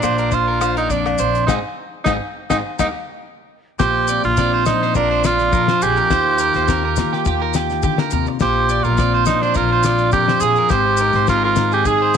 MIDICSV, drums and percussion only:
0, 0, Header, 1, 2, 480
1, 0, Start_track
1, 0, Tempo, 576923
1, 1232, Time_signature, 4, 2, 24, 8
1, 10125, End_track
2, 0, Start_track
2, 0, Title_t, "Drums"
2, 22, Note_on_c, 9, 70, 88
2, 25, Note_on_c, 9, 37, 75
2, 25, Note_on_c, 9, 42, 51
2, 31, Note_on_c, 9, 68, 66
2, 105, Note_off_c, 9, 70, 0
2, 108, Note_off_c, 9, 37, 0
2, 108, Note_off_c, 9, 42, 0
2, 114, Note_off_c, 9, 68, 0
2, 149, Note_on_c, 9, 70, 29
2, 152, Note_on_c, 9, 42, 44
2, 232, Note_off_c, 9, 70, 0
2, 235, Note_off_c, 9, 42, 0
2, 260, Note_on_c, 9, 70, 76
2, 265, Note_on_c, 9, 42, 44
2, 266, Note_on_c, 9, 36, 80
2, 343, Note_off_c, 9, 70, 0
2, 349, Note_off_c, 9, 36, 0
2, 349, Note_off_c, 9, 42, 0
2, 507, Note_on_c, 9, 70, 96
2, 509, Note_on_c, 9, 37, 72
2, 509, Note_on_c, 9, 42, 49
2, 509, Note_on_c, 9, 68, 63
2, 590, Note_off_c, 9, 70, 0
2, 592, Note_off_c, 9, 68, 0
2, 593, Note_off_c, 9, 37, 0
2, 593, Note_off_c, 9, 42, 0
2, 639, Note_on_c, 9, 42, 51
2, 722, Note_off_c, 9, 42, 0
2, 749, Note_on_c, 9, 36, 61
2, 749, Note_on_c, 9, 70, 73
2, 752, Note_on_c, 9, 42, 48
2, 832, Note_off_c, 9, 36, 0
2, 832, Note_off_c, 9, 70, 0
2, 835, Note_off_c, 9, 42, 0
2, 880, Note_on_c, 9, 37, 66
2, 883, Note_on_c, 9, 68, 65
2, 963, Note_off_c, 9, 37, 0
2, 966, Note_off_c, 9, 68, 0
2, 981, Note_on_c, 9, 70, 97
2, 994, Note_on_c, 9, 42, 49
2, 1065, Note_off_c, 9, 70, 0
2, 1077, Note_off_c, 9, 42, 0
2, 1120, Note_on_c, 9, 70, 26
2, 1122, Note_on_c, 9, 42, 51
2, 1203, Note_off_c, 9, 70, 0
2, 1205, Note_off_c, 9, 42, 0
2, 1232, Note_on_c, 9, 36, 68
2, 1233, Note_on_c, 9, 38, 71
2, 1236, Note_on_c, 9, 70, 87
2, 1240, Note_on_c, 9, 68, 87
2, 1315, Note_off_c, 9, 36, 0
2, 1316, Note_off_c, 9, 38, 0
2, 1319, Note_off_c, 9, 70, 0
2, 1323, Note_off_c, 9, 68, 0
2, 1710, Note_on_c, 9, 38, 72
2, 1712, Note_on_c, 9, 70, 92
2, 1715, Note_on_c, 9, 36, 71
2, 1723, Note_on_c, 9, 68, 90
2, 1793, Note_off_c, 9, 38, 0
2, 1796, Note_off_c, 9, 70, 0
2, 1798, Note_off_c, 9, 36, 0
2, 1806, Note_off_c, 9, 68, 0
2, 2080, Note_on_c, 9, 38, 71
2, 2083, Note_on_c, 9, 36, 70
2, 2083, Note_on_c, 9, 70, 92
2, 2085, Note_on_c, 9, 68, 89
2, 2163, Note_off_c, 9, 38, 0
2, 2166, Note_off_c, 9, 36, 0
2, 2166, Note_off_c, 9, 70, 0
2, 2168, Note_off_c, 9, 68, 0
2, 2322, Note_on_c, 9, 70, 97
2, 2324, Note_on_c, 9, 38, 70
2, 2325, Note_on_c, 9, 68, 90
2, 2326, Note_on_c, 9, 36, 72
2, 2405, Note_off_c, 9, 70, 0
2, 2407, Note_off_c, 9, 38, 0
2, 2408, Note_off_c, 9, 68, 0
2, 2409, Note_off_c, 9, 36, 0
2, 3155, Note_on_c, 9, 70, 72
2, 3162, Note_on_c, 9, 36, 96
2, 3162, Note_on_c, 9, 38, 81
2, 3238, Note_off_c, 9, 70, 0
2, 3245, Note_off_c, 9, 36, 0
2, 3245, Note_off_c, 9, 38, 0
2, 3393, Note_on_c, 9, 70, 105
2, 3476, Note_off_c, 9, 70, 0
2, 3523, Note_on_c, 9, 70, 30
2, 3606, Note_off_c, 9, 70, 0
2, 3634, Note_on_c, 9, 70, 84
2, 3643, Note_on_c, 9, 36, 91
2, 3644, Note_on_c, 9, 38, 71
2, 3717, Note_off_c, 9, 70, 0
2, 3726, Note_off_c, 9, 36, 0
2, 3727, Note_off_c, 9, 38, 0
2, 3874, Note_on_c, 9, 70, 100
2, 3881, Note_on_c, 9, 38, 78
2, 3957, Note_off_c, 9, 70, 0
2, 3965, Note_off_c, 9, 38, 0
2, 4013, Note_on_c, 9, 38, 27
2, 4096, Note_off_c, 9, 38, 0
2, 4115, Note_on_c, 9, 70, 83
2, 4123, Note_on_c, 9, 36, 91
2, 4199, Note_off_c, 9, 70, 0
2, 4206, Note_off_c, 9, 36, 0
2, 4359, Note_on_c, 9, 70, 100
2, 4365, Note_on_c, 9, 38, 84
2, 4442, Note_off_c, 9, 70, 0
2, 4449, Note_off_c, 9, 38, 0
2, 4484, Note_on_c, 9, 70, 29
2, 4491, Note_on_c, 9, 38, 30
2, 4567, Note_off_c, 9, 70, 0
2, 4574, Note_off_c, 9, 38, 0
2, 4597, Note_on_c, 9, 70, 73
2, 4600, Note_on_c, 9, 36, 100
2, 4680, Note_off_c, 9, 70, 0
2, 4683, Note_off_c, 9, 36, 0
2, 4726, Note_on_c, 9, 38, 75
2, 4809, Note_off_c, 9, 38, 0
2, 4840, Note_on_c, 9, 70, 98
2, 4923, Note_off_c, 9, 70, 0
2, 4961, Note_on_c, 9, 70, 30
2, 5044, Note_off_c, 9, 70, 0
2, 5079, Note_on_c, 9, 38, 78
2, 5079, Note_on_c, 9, 70, 81
2, 5081, Note_on_c, 9, 36, 99
2, 5162, Note_off_c, 9, 38, 0
2, 5162, Note_off_c, 9, 70, 0
2, 5164, Note_off_c, 9, 36, 0
2, 5311, Note_on_c, 9, 70, 104
2, 5394, Note_off_c, 9, 70, 0
2, 5437, Note_on_c, 9, 70, 31
2, 5448, Note_on_c, 9, 38, 30
2, 5520, Note_off_c, 9, 70, 0
2, 5531, Note_off_c, 9, 38, 0
2, 5556, Note_on_c, 9, 70, 78
2, 5562, Note_on_c, 9, 36, 94
2, 5564, Note_on_c, 9, 38, 74
2, 5639, Note_off_c, 9, 70, 0
2, 5645, Note_off_c, 9, 36, 0
2, 5647, Note_off_c, 9, 38, 0
2, 5791, Note_on_c, 9, 70, 91
2, 5806, Note_on_c, 9, 38, 81
2, 5874, Note_off_c, 9, 70, 0
2, 5889, Note_off_c, 9, 38, 0
2, 5935, Note_on_c, 9, 38, 28
2, 6019, Note_off_c, 9, 38, 0
2, 6033, Note_on_c, 9, 70, 78
2, 6041, Note_on_c, 9, 36, 92
2, 6116, Note_off_c, 9, 70, 0
2, 6124, Note_off_c, 9, 36, 0
2, 6270, Note_on_c, 9, 70, 104
2, 6280, Note_on_c, 9, 38, 75
2, 6353, Note_off_c, 9, 70, 0
2, 6363, Note_off_c, 9, 38, 0
2, 6402, Note_on_c, 9, 70, 28
2, 6410, Note_on_c, 9, 38, 30
2, 6486, Note_off_c, 9, 70, 0
2, 6493, Note_off_c, 9, 38, 0
2, 6510, Note_on_c, 9, 70, 74
2, 6517, Note_on_c, 9, 36, 97
2, 6594, Note_off_c, 9, 70, 0
2, 6601, Note_off_c, 9, 36, 0
2, 6641, Note_on_c, 9, 38, 84
2, 6724, Note_off_c, 9, 38, 0
2, 6744, Note_on_c, 9, 70, 95
2, 6827, Note_off_c, 9, 70, 0
2, 6874, Note_on_c, 9, 70, 29
2, 6957, Note_off_c, 9, 70, 0
2, 6984, Note_on_c, 9, 70, 74
2, 6994, Note_on_c, 9, 36, 101
2, 6994, Note_on_c, 9, 38, 83
2, 7068, Note_off_c, 9, 70, 0
2, 7077, Note_off_c, 9, 36, 0
2, 7077, Note_off_c, 9, 38, 0
2, 7230, Note_on_c, 9, 70, 100
2, 7313, Note_off_c, 9, 70, 0
2, 7356, Note_on_c, 9, 70, 27
2, 7439, Note_off_c, 9, 70, 0
2, 7466, Note_on_c, 9, 70, 73
2, 7474, Note_on_c, 9, 36, 92
2, 7477, Note_on_c, 9, 38, 75
2, 7549, Note_off_c, 9, 70, 0
2, 7557, Note_off_c, 9, 36, 0
2, 7560, Note_off_c, 9, 38, 0
2, 7701, Note_on_c, 9, 70, 86
2, 7712, Note_on_c, 9, 38, 80
2, 7784, Note_off_c, 9, 70, 0
2, 7795, Note_off_c, 9, 38, 0
2, 7837, Note_on_c, 9, 38, 29
2, 7920, Note_off_c, 9, 38, 0
2, 7940, Note_on_c, 9, 70, 71
2, 7950, Note_on_c, 9, 36, 91
2, 8023, Note_off_c, 9, 70, 0
2, 8034, Note_off_c, 9, 36, 0
2, 8180, Note_on_c, 9, 70, 100
2, 8192, Note_on_c, 9, 38, 79
2, 8264, Note_off_c, 9, 70, 0
2, 8275, Note_off_c, 9, 38, 0
2, 8305, Note_on_c, 9, 70, 28
2, 8388, Note_off_c, 9, 70, 0
2, 8417, Note_on_c, 9, 70, 73
2, 8428, Note_on_c, 9, 36, 99
2, 8501, Note_off_c, 9, 70, 0
2, 8512, Note_off_c, 9, 36, 0
2, 8556, Note_on_c, 9, 38, 78
2, 8639, Note_off_c, 9, 38, 0
2, 8656, Note_on_c, 9, 70, 100
2, 8739, Note_off_c, 9, 70, 0
2, 8782, Note_on_c, 9, 70, 29
2, 8865, Note_off_c, 9, 70, 0
2, 8895, Note_on_c, 9, 70, 77
2, 8905, Note_on_c, 9, 38, 78
2, 8907, Note_on_c, 9, 36, 101
2, 8978, Note_off_c, 9, 70, 0
2, 8988, Note_off_c, 9, 38, 0
2, 8990, Note_off_c, 9, 36, 0
2, 9128, Note_on_c, 9, 70, 108
2, 9211, Note_off_c, 9, 70, 0
2, 9257, Note_on_c, 9, 70, 28
2, 9274, Note_on_c, 9, 38, 31
2, 9341, Note_off_c, 9, 70, 0
2, 9357, Note_off_c, 9, 38, 0
2, 9377, Note_on_c, 9, 70, 75
2, 9385, Note_on_c, 9, 38, 70
2, 9387, Note_on_c, 9, 36, 93
2, 9460, Note_off_c, 9, 70, 0
2, 9468, Note_off_c, 9, 38, 0
2, 9470, Note_off_c, 9, 36, 0
2, 9616, Note_on_c, 9, 70, 91
2, 9622, Note_on_c, 9, 38, 83
2, 9699, Note_off_c, 9, 70, 0
2, 9706, Note_off_c, 9, 38, 0
2, 9748, Note_on_c, 9, 70, 31
2, 9831, Note_off_c, 9, 70, 0
2, 9861, Note_on_c, 9, 70, 79
2, 9863, Note_on_c, 9, 36, 86
2, 9945, Note_off_c, 9, 70, 0
2, 9946, Note_off_c, 9, 36, 0
2, 10125, End_track
0, 0, End_of_file